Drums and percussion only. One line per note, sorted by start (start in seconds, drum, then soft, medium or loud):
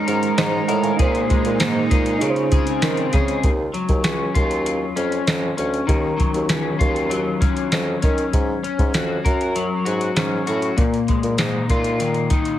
0.08 closed hi-hat medium
0.23 closed hi-hat medium
0.38 snare loud
0.38 closed hi-hat medium
0.69 closed hi-hat medium
0.84 closed hi-hat soft
0.99 kick loud
0.99 closed hi-hat medium
1.15 closed hi-hat soft
1.30 kick medium
1.30 closed hi-hat medium
1.45 closed hi-hat soft
1.60 snare loud
1.60 closed hi-hat medium
1.91 kick medium
1.91 closed hi-hat medium
2.06 closed hi-hat medium
2.21 closed hi-hat medium
2.36 closed hi-hat soft
2.52 kick loud
2.52 closed hi-hat medium
2.67 closed hi-hat medium
2.82 snare loud
2.82 closed hi-hat medium
2.97 closed hi-hat soft
3.13 kick loud
3.13 snare soft
3.13 closed hi-hat medium
3.28 closed hi-hat soft
3.44 kick loud
3.44 closed hi-hat medium
3.74 closed hi-hat soft
3.89 kick medium
3.89 closed hi-hat soft
4.04 snare loud
4.04 closed hi-hat medium
4.35 kick medium
4.35 closed hi-hat medium
4.51 closed hi-hat soft
4.66 closed hi-hat medium
4.97 closed hi-hat medium
5.12 closed hi-hat soft
5.27 snare loud
5.27 closed hi-hat medium
5.58 closed hi-hat medium
5.74 closed hi-hat soft
5.88 kick medium
5.88 closed hi-hat medium
6.20 kick medium
6.20 closed hi-hat medium
6.34 closed hi-hat soft
6.49 snare loud
6.49 closed hi-hat medium
6.80 kick medium
6.80 closed hi-hat medium
6.96 closed hi-hat soft
7.11 closed hi-hat medium
7.41 kick medium
7.41 closed hi-hat medium
7.57 closed hi-hat soft
7.72 snare loud
7.72 closed hi-hat medium
8.02 kick medium
8.02 closed hi-hat medium
8.18 closed hi-hat soft
8.33 kick loud
8.33 closed hi-hat medium
8.64 closed hi-hat soft
8.79 kick medium
8.79 closed hi-hat soft
8.94 snare loud
8.94 closed hi-hat loud
9.25 kick medium
9.25 closed hi-hat medium
9.41 closed hi-hat soft
9.56 closed hi-hat medium
9.86 closed hi-hat medium
10.01 closed hi-hat medium
10.16 snare loud
10.16 closed hi-hat medium
10.47 closed hi-hat medium
10.62 closed hi-hat soft
10.78 kick loud
10.78 closed hi-hat medium
10.94 closed hi-hat soft
11.08 kick medium
11.08 closed hi-hat medium
11.23 closed hi-hat soft
11.38 snare loud
11.38 closed hi-hat medium
11.69 kick medium
11.69 closed hi-hat medium
11.84 closed hi-hat medium
12.00 closed hi-hat medium
12.14 closed hi-hat soft
12.30 kick medium
12.30 closed hi-hat medium
12.45 closed hi-hat medium